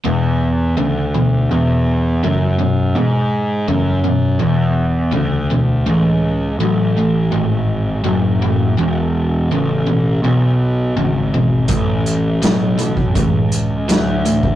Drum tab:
HH |----------------|----------------|----------------|----------------|
SD |----------------|----------------|----------------|----------------|
BD |----------------|----------------|----------------|----------------|

HH |x-x-x-x-x-x-x-x-|
SD |----o-------o---|
BD |o------oo------o|